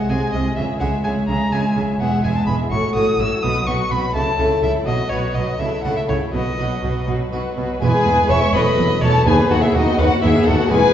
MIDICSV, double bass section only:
0, 0, Header, 1, 2, 480
1, 0, Start_track
1, 0, Tempo, 477327
1, 571, Time_signature, 6, 3, 24, 8
1, 4890, Tempo, 492611
1, 7770, Tempo, 481928
1, 10874, End_track
2, 0, Start_track
2, 0, Title_t, "Double bass section"
2, 0, Program_c, 0, 48
2, 89, Note_on_c, 0, 36, 46
2, 170, Note_off_c, 0, 36, 0
2, 336, Note_on_c, 0, 36, 46
2, 416, Note_off_c, 0, 36, 0
2, 575, Note_on_c, 0, 37, 53
2, 655, Note_off_c, 0, 37, 0
2, 814, Note_on_c, 0, 37, 49
2, 894, Note_off_c, 0, 37, 0
2, 1046, Note_on_c, 0, 37, 47
2, 1127, Note_off_c, 0, 37, 0
2, 1285, Note_on_c, 0, 37, 46
2, 1366, Note_off_c, 0, 37, 0
2, 1530, Note_on_c, 0, 37, 45
2, 1611, Note_off_c, 0, 37, 0
2, 1770, Note_on_c, 0, 37, 47
2, 1850, Note_off_c, 0, 37, 0
2, 2008, Note_on_c, 0, 28, 53
2, 2088, Note_off_c, 0, 28, 0
2, 2244, Note_on_c, 0, 28, 50
2, 2325, Note_off_c, 0, 28, 0
2, 2484, Note_on_c, 0, 28, 52
2, 2565, Note_off_c, 0, 28, 0
2, 2728, Note_on_c, 0, 33, 50
2, 2808, Note_off_c, 0, 33, 0
2, 2969, Note_on_c, 0, 33, 51
2, 3049, Note_off_c, 0, 33, 0
2, 3212, Note_on_c, 0, 33, 52
2, 3293, Note_off_c, 0, 33, 0
2, 3452, Note_on_c, 0, 35, 56
2, 3532, Note_off_c, 0, 35, 0
2, 3692, Note_on_c, 0, 35, 52
2, 3772, Note_off_c, 0, 35, 0
2, 3933, Note_on_c, 0, 35, 51
2, 4013, Note_off_c, 0, 35, 0
2, 4169, Note_on_c, 0, 37, 51
2, 4249, Note_off_c, 0, 37, 0
2, 4408, Note_on_c, 0, 37, 50
2, 4488, Note_off_c, 0, 37, 0
2, 4651, Note_on_c, 0, 37, 56
2, 4731, Note_off_c, 0, 37, 0
2, 4893, Note_on_c, 0, 35, 60
2, 4971, Note_off_c, 0, 35, 0
2, 5128, Note_on_c, 0, 35, 55
2, 5206, Note_off_c, 0, 35, 0
2, 5361, Note_on_c, 0, 35, 50
2, 5439, Note_off_c, 0, 35, 0
2, 5599, Note_on_c, 0, 37, 51
2, 5677, Note_off_c, 0, 37, 0
2, 5838, Note_on_c, 0, 37, 48
2, 5916, Note_off_c, 0, 37, 0
2, 6081, Note_on_c, 0, 37, 51
2, 6159, Note_off_c, 0, 37, 0
2, 6326, Note_on_c, 0, 35, 57
2, 6404, Note_off_c, 0, 35, 0
2, 6568, Note_on_c, 0, 35, 49
2, 6646, Note_off_c, 0, 35, 0
2, 6809, Note_on_c, 0, 35, 49
2, 6887, Note_off_c, 0, 35, 0
2, 7048, Note_on_c, 0, 35, 47
2, 7126, Note_off_c, 0, 35, 0
2, 7291, Note_on_c, 0, 35, 45
2, 7369, Note_off_c, 0, 35, 0
2, 7533, Note_on_c, 0, 35, 51
2, 7611, Note_off_c, 0, 35, 0
2, 7776, Note_on_c, 0, 28, 80
2, 7856, Note_off_c, 0, 28, 0
2, 8018, Note_on_c, 0, 28, 71
2, 8098, Note_off_c, 0, 28, 0
2, 8254, Note_on_c, 0, 28, 70
2, 8334, Note_off_c, 0, 28, 0
2, 8495, Note_on_c, 0, 28, 69
2, 8575, Note_off_c, 0, 28, 0
2, 8735, Note_on_c, 0, 28, 69
2, 8814, Note_off_c, 0, 28, 0
2, 8971, Note_on_c, 0, 28, 67
2, 9051, Note_off_c, 0, 28, 0
2, 9210, Note_on_c, 0, 39, 75
2, 9289, Note_off_c, 0, 39, 0
2, 9451, Note_on_c, 0, 39, 73
2, 9531, Note_off_c, 0, 39, 0
2, 9696, Note_on_c, 0, 39, 68
2, 9775, Note_off_c, 0, 39, 0
2, 9935, Note_on_c, 0, 39, 69
2, 10015, Note_off_c, 0, 39, 0
2, 10180, Note_on_c, 0, 39, 69
2, 10260, Note_off_c, 0, 39, 0
2, 10415, Note_on_c, 0, 39, 70
2, 10495, Note_off_c, 0, 39, 0
2, 10656, Note_on_c, 0, 28, 80
2, 10736, Note_off_c, 0, 28, 0
2, 10874, End_track
0, 0, End_of_file